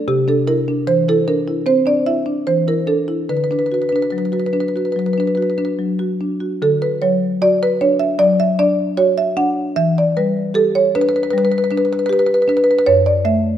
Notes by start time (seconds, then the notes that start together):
0.08 C3 G4
0.28 D4 A4
0.47 E4 A#4
0.68 D4
0.87 E3 C5
1.08 E4 A4
1.28 D4 A#4
1.47 E4
1.66 C4 C5
1.86 D4 D5
2.06 E4 E5
2.26 D4
2.47 E3 C5
2.68 E4 A#4
2.87 D4 A4
3.08 E4
3.29 D3 B4
3.37 B4
3.44 B4
3.51 D4 B4
3.59 B4
3.66 B4
3.72 F#4 B4
3.82 B4
3.89 D4 B4
3.96 B4
4.02 B4
4.10 F#3 B4
4.18 B4
4.25 B4
4.32 F#4 B4
4.40 B4
4.46 B4
4.53 D4 B4
4.60 B4
4.68 B4
4.76 F#4 B4
4.85 B4
4.92 F#3 B4
4.99 B4
5.06 B4
5.13 B4
5.18 D4 B4
5.27 B4
5.35 F#4 B4
5.42 B4
5.50 B4
5.58 D4 B4
5.65 B4
5.79 F#3
5.99 F#4
6.21 D4
6.40 F#4
6.62 D3 A4
6.82 B4
7.02 F#3 C#5
7.42 F#4 D5
7.63 B4
7.81 D4 C#5
7.99 E5
8.19 F#3 D5
8.40 E5
8.59 D4 D5
8.97 F#4 C#5
9.18 E5
9.37 D4 F#5
9.76 E3 E5
9.98 D5
10.17 G3 B4
10.54 G4 A4
10.75 C#5
10.95 D4 B4
11.01 B4
11.09 B4
11.16 B4
11.23 B4
11.31 G3 B4
11.38 B4
11.45 B4
11.52 B4
11.58 B4
11.64 B4
11.71 D4 B4
11.78 B4
11.85 B4
11.93 B4
11.99 B4
12.06 G4 B4
12.13 B4
12.19 B4
12.26 B4
12.34 B4
12.42 B4
12.48 D4 B4
12.57 B4
12.64 B4
12.71 B4
12.79 B4
12.86 F#2 C#5
13.06 D5
13.25 A3 E5